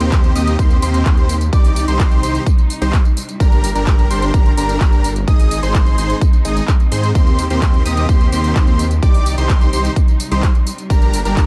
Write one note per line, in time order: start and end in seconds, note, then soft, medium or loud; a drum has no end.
0.00 0.33 D#2 loud
0.00 1.51 D#3 medium
0.00 0.33 A#3 medium
0.00 1.51 C4 medium
0.00 0.33 C4 medium
0.00 0.33 D#4 medium
0.00 1.51 G4 medium
0.00 0.33 G4 medium
0.00 0.33 C5 loud
0.00 0.33 C6 medium
0.00 closed hi-hat medium
0.00 tambourine soft
0.12 kick loud
0.12 clap loud
0.12 closed hi-hat medium
0.12 tambourine soft
0.24 closed hi-hat soft
0.24 tambourine soft
0.36 0.57 D#2 medium
0.36 0.56 A#3 loud
0.36 0.56 C4 medium
0.36 0.56 D#4 medium
0.36 0.56 G4 medium
0.36 0.56 D#5 loud
0.36 0.56 D#6 loud
0.36 open hi-hat loud
0.36 tambourine medium
0.47 closed hi-hat medium
0.47 tambourine soft
0.59 0.80 D#2 loud
0.59 0.77 A#3 medium
0.59 0.77 C4 medium
0.59 0.77 D#4 medium
0.59 0.77 G4 medium
0.59 0.77 C5 loud
0.59 0.77 C6 loud
0.59 kick loud
0.59 closed hi-hat medium
0.59 tambourine soft
0.71 closed hi-hat soft
0.71 tambourine soft
0.82 1.04 D#2 medium
0.82 1.03 A#3 medium
0.82 1.03 C4 medium
0.82 1.03 D#4 medium
0.82 1.03 G4 medium
0.82 1.03 C5 loud
0.82 1.03 C6 loud
0.82 open hi-hat loud
0.82 tambourine medium
0.94 closed hi-hat medium
0.94 tambourine soft
1.06 1.50 D#2 loud
1.06 1.35 A#3 medium
1.06 1.35 C4 medium
1.06 1.35 D#4 medium
1.06 1.35 G4 medium
1.06 1.35 C5 medium
1.06 1.35 C6 medium
1.06 kick loud
1.06 clap loud
1.06 closed hi-hat medium
1.06 tambourine soft
1.18 closed hi-hat soft
1.18 tambourine soft
1.29 open hi-hat loud
1.29 tambourine medium
1.41 closed hi-hat medium
1.41 tambourine soft
1.53 1.86 C2 loud
1.53 3.38 C3 medium
1.53 5.24 G3 medium
1.53 1.85 D#4 loud
1.53 3.38 D#4 medium
1.53 1.85 G4 medium
1.53 1.85 D5 loud
1.53 1.85 D6 loud
1.53 kick loud
1.53 closed hi-hat medium
1.53 tambourine soft
1.64 open hi-hat medium
1.64 tambourine soft
1.76 open hi-hat loud
1.76 tambourine medium
1.88 2.21 C2 loud
1.88 2.20 D#4 loud
1.88 2.20 G4 medium
1.88 2.20 C5 loud
1.88 2.20 C6 loud
1.88 closed hi-hat medium
1.88 tambourine soft
1.99 kick loud
1.99 clap loud
1.99 closed hi-hat medium
1.99 tambourine soft
2.11 closed hi-hat soft
2.11 tambourine soft
2.23 2.39 C2 medium
2.23 2.41 D#4 loud
2.23 2.41 G4 medium
2.23 2.41 C5 loud
2.23 2.41 C6 loud
2.23 open hi-hat loud
2.23 tambourine medium
2.35 closed hi-hat medium
2.35 tambourine soft
2.46 kick loud
2.46 closed hi-hat medium
2.46 tambourine soft
2.58 closed hi-hat soft
2.58 tambourine soft
2.70 open hi-hat loud
2.70 tambourine medium
2.82 2.97 C2 loud
2.82 3.00 D#4 medium
2.82 3.00 G4 medium
2.82 3.00 C5 medium
2.82 3.00 C6 medium
2.82 closed hi-hat medium
2.82 tambourine soft
2.93 kick loud
2.93 clap loud
2.93 closed hi-hat medium
2.93 tambourine soft
3.05 closed hi-hat soft
3.05 tambourine soft
3.17 open hi-hat loud
3.17 tambourine medium
3.29 closed hi-hat medium
3.29 tambourine soft
3.40 3.73 G1 loud
3.40 3.69 D4 medium
3.40 5.26 D4 medium
3.40 3.69 G4 medium
3.40 3.69 A#4 loud
3.40 5.26 A#4 medium
3.40 3.69 A#5 loud
3.40 kick loud
3.40 closed hi-hat soft
3.40 tambourine soft
3.52 closed hi-hat soft
3.52 tambourine soft
3.64 open hi-hat loud
3.64 tambourine medium
3.75 4.08 G1 medium
3.75 4.08 D4 medium
3.75 4.08 G4 medium
3.75 4.08 A#4 loud
3.75 4.08 A#5 loud
3.75 closed hi-hat medium
3.75 tambourine soft
3.87 kick loud
3.87 clap loud
3.87 closed hi-hat medium
3.87 tambourine soft
3.99 closed hi-hat soft
3.99 tambourine soft
4.10 4.32 G1 loud
4.10 4.31 D4 loud
4.10 4.31 G4 loud
4.10 4.31 C5 loud
4.10 4.31 C6 loud
4.10 open hi-hat loud
4.10 tambourine medium
4.22 closed hi-hat medium
4.22 tambourine soft
4.34 4.55 G1 loud
4.34 4.52 D4 loud
4.34 4.52 G4 medium
4.34 4.52 A#4 loud
4.34 4.52 A#5 loud
4.34 kick loud
4.34 closed hi-hat medium
4.34 tambourine soft
4.46 closed hi-hat soft
4.46 tambourine soft
4.57 4.78 G1 medium
4.57 4.78 D4 loud
4.57 4.78 G4 medium
4.57 4.78 A#4 loud
4.57 4.78 A#5 loud
4.57 open hi-hat loud
4.57 tambourine medium
4.69 closed hi-hat soft
4.69 tambourine soft
4.81 5.25 G1 medium
4.81 5.10 D4 medium
4.81 5.10 G4 medium
4.81 5.10 A#4 loud
4.81 5.10 A#5 medium
4.81 kick loud
4.81 clap loud
4.81 closed hi-hat medium
4.81 tambourine soft
4.93 closed hi-hat soft
4.93 tambourine soft
5.04 open hi-hat loud
5.04 tambourine medium
5.16 closed hi-hat medium
5.16 tambourine soft
5.28 5.60 G#1 loud
5.28 7.13 G#3 medium
5.28 8.99 C4 medium
5.28 7.13 D#4 loud
5.28 5.60 D#4 loud
5.28 5.60 G#4 medium
5.28 5.60 D#5 loud
5.28 5.60 D#6 loud
5.28 kick loud
5.28 closed hi-hat soft
5.28 tambourine soft
5.39 open hi-hat medium
5.39 tambourine soft
5.51 open hi-hat loud
5.51 tambourine medium
5.63 5.96 G#1 loud
5.63 5.95 D#4 loud
5.63 5.95 G#4 medium
5.63 5.95 C5 loud
5.63 5.95 C6 loud
5.63 closed hi-hat soft
5.63 tambourine soft
5.74 kick loud
5.74 clap loud
5.74 closed hi-hat medium
5.74 tambourine soft
5.86 closed hi-hat soft
5.86 tambourine soft
5.98 6.14 G#1 loud
5.98 6.16 D#4 loud
5.98 6.16 G#4 medium
5.98 6.16 C5 loud
5.98 6.16 C6 loud
5.98 open hi-hat loud
5.98 tambourine medium
6.10 closed hi-hat medium
6.10 tambourine soft
6.21 kick loud
6.21 closed hi-hat medium
6.21 tambourine soft
6.33 closed hi-hat soft
6.33 tambourine soft
6.45 6.61 G#1 medium
6.45 6.63 D#4 medium
6.45 6.63 G#4 medium
6.45 6.63 D#5 medium
6.45 6.63 D#6 medium
6.45 open hi-hat loud
6.45 tambourine medium
6.57 closed hi-hat soft
6.57 tambourine soft
6.68 kick loud
6.68 clap loud
6.68 closed hi-hat medium
6.68 tambourine soft
6.80 closed hi-hat soft
6.80 tambourine soft
6.92 7.13 G#2 loud
6.92 7.10 D#4 medium
6.92 7.10 G#4 medium
6.92 7.10 C5 loud
6.92 7.10 C6 loud
6.92 open hi-hat loud
6.92 tambourine medium
7.04 closed hi-hat medium
7.04 tambourine soft
7.15 7.48 D#2 loud
7.15 9.01 D#3 medium
7.15 7.44 A#3 medium
7.15 7.44 C4 medium
7.15 7.44 D#4 medium
7.15 7.44 G4 medium
7.15 9.01 G4 loud
7.15 7.44 C5 loud
7.15 7.44 C6 loud
7.15 kick loud
7.15 closed hi-hat soft
7.15 tambourine soft
7.27 closed hi-hat soft
7.27 tambourine soft
7.39 open hi-hat loud
7.39 tambourine medium
7.50 7.83 D#2 loud
7.50 7.83 A#3 medium
7.50 7.83 C4 medium
7.50 7.83 D#4 medium
7.50 7.83 G4 medium
7.50 7.83 C5 medium
7.50 7.83 C6 medium
7.50 closed hi-hat medium
7.50 tambourine soft
7.62 kick loud
7.62 clap loud
7.62 closed hi-hat medium
7.62 tambourine soft
7.74 closed hi-hat soft
7.74 tambourine soft
7.85 8.07 D#2 medium
7.85 8.06 A#3 loud
7.85 8.06 C4 medium
7.85 8.06 D#4 medium
7.85 8.06 G4 medium
7.85 8.06 D#5 loud
7.85 8.06 D#6 loud
7.85 open hi-hat loud
7.85 tambourine medium
7.97 closed hi-hat medium
7.97 tambourine soft
8.09 8.30 D#2 loud
8.09 8.27 A#3 medium
8.09 8.27 C4 medium
8.09 8.27 D#4 medium
8.09 8.27 G4 medium
8.09 8.27 C5 loud
8.09 8.27 C6 loud
8.09 kick loud
8.09 closed hi-hat medium
8.09 tambourine soft
8.21 closed hi-hat soft
8.21 tambourine soft
8.32 8.53 D#2 loud
8.32 8.53 A#3 medium
8.32 8.53 C4 medium
8.32 8.53 D#4 medium
8.32 8.53 G4 medium
8.32 8.53 C5 loud
8.32 8.53 C6 loud
8.32 open hi-hat loud
8.32 tambourine medium
8.44 closed hi-hat soft
8.44 tambourine soft
8.56 9.00 D#2 medium
8.56 8.85 A#3 medium
8.56 8.85 C4 medium
8.56 8.85 D#4 medium
8.56 8.85 G4 medium
8.56 8.85 C5 medium
8.56 8.85 C6 medium
8.56 kick loud
8.56 clap loud
8.56 closed hi-hat soft
8.56 tambourine soft
8.67 closed hi-hat soft
8.67 tambourine soft
8.79 open hi-hat loud
8.79 tambourine medium
8.91 closed hi-hat medium
8.91 tambourine soft
9.03 9.35 C2 loud
9.03 10.88 C3 medium
9.03 11.46 G3 medium
9.03 9.35 D#4 loud
9.03 10.88 D#4 medium
9.03 9.35 G4 medium
9.03 9.35 D5 loud
9.03 9.35 D6 loud
9.03 kick loud
9.03 closed hi-hat medium
9.03 tambourine soft
9.14 open hi-hat medium
9.14 tambourine soft
9.26 open hi-hat loud
9.26 tambourine medium
9.38 9.71 C2 loud
9.38 9.70 D#4 loud
9.38 9.70 G4 medium
9.38 9.70 C5 loud
9.38 9.70 C6 loud
9.38 closed hi-hat medium
9.38 tambourine soft
9.49 kick loud
9.49 clap loud
9.49 closed hi-hat medium
9.49 tambourine soft
9.61 closed hi-hat soft
9.61 tambourine soft
9.73 9.89 C2 loud
9.73 9.91 D#4 loud
9.73 9.91 G4 loud
9.73 9.91 C5 loud
9.73 9.91 C6 loud
9.73 open hi-hat loud
9.73 tambourine medium
9.85 closed hi-hat medium
9.85 tambourine soft
9.96 kick loud
9.96 closed hi-hat medium
9.96 tambourine soft
10.08 closed hi-hat soft
10.08 tambourine soft
10.20 open hi-hat loud
10.20 tambourine medium
10.31 10.47 C2 loud
10.31 10.50 D#4 medium
10.31 10.50 G4 medium
10.31 10.50 C5 medium
10.31 10.50 C6 medium
10.31 closed hi-hat medium
10.31 tambourine soft
10.43 kick loud
10.43 clap loud
10.43 closed hi-hat medium
10.43 tambourine soft
10.55 closed hi-hat soft
10.55 tambourine soft
10.67 open hi-hat loud
10.67 tambourine medium
10.78 closed hi-hat medium
10.78 tambourine soft
10.90 11.23 G1 loud
10.90 11.19 D4 medium
10.90 11.46 D4 medium
10.90 11.19 G4 medium
10.90 11.19 A#4 loud
10.90 11.46 A#4 medium
10.90 11.19 A#5 loud
10.90 kick loud
10.90 closed hi-hat medium
10.90 tambourine soft
11.02 closed hi-hat soft
11.02 tambourine soft
11.13 open hi-hat loud
11.13 tambourine medium
11.25 11.46 G1 loud
11.25 11.46 D4 medium
11.25 11.46 G4 medium
11.25 11.46 A#4 medium
11.25 11.46 A#5 medium
11.25 closed hi-hat medium
11.25 tambourine soft
11.37 kick loud
11.37 clap loud
11.37 closed hi-hat medium
11.37 tambourine soft